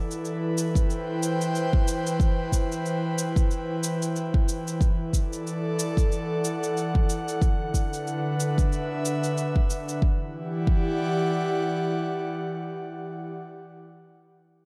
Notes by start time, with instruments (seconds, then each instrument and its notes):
Already playing: analog synth pad E3 E4 A4 B4 D5
0.11 shaker
0.25 shaker
0.58 analog synth pad C5, shaker
0.62 analog synth pad G5
0.75 kick, shaker
0.90 shaker
1.23 shaker
1.41 shaker
1.55 shaker
1.73 kick
1.88 shaker
2.07 shaker
2.20 kick, shaker
2.52 kick, shaker
2.72 shaker
2.86 shaker
3.18 shaker
3.36 kick, shaker
3.51 shaker
3.83 shaker
4.02 shaker
4.16 shaker
4.34 kick
4.49 shaker
4.67 shaker
4.81 kick, shaker
5.06 analog synth pad A4 D5
5.13 kick, shaker
5.33 shaker
5.47 shaker
5.79 shaker
5.97 analog synth pad F#5, kick, shaker
6.12 shaker
6.45 shaker
6.63 shaker
6.77 shaker
6.95 kick
7.09 shaker
7.28 shaker
7.41 analog synth pad D3, kick, shaker
7.72 analog synth pad D4 B4, kick, shaker
7.93 shaker
8.07 shaker
8.16 analog synth pad E5
8.40 shaker
8.58 kick, shaker
8.72 shaker
9.05 shaker
9.24 shaker
9.38 shaker
9.56 kick
9.70 shaker
9.89 shaker
10.02 analog synth pad E3, kick
10.13 analog synth pad E4
10.23 analog synth pad G4
10.31 analog synth pad D5
10.41 analog synth pad F#5
10.67 kick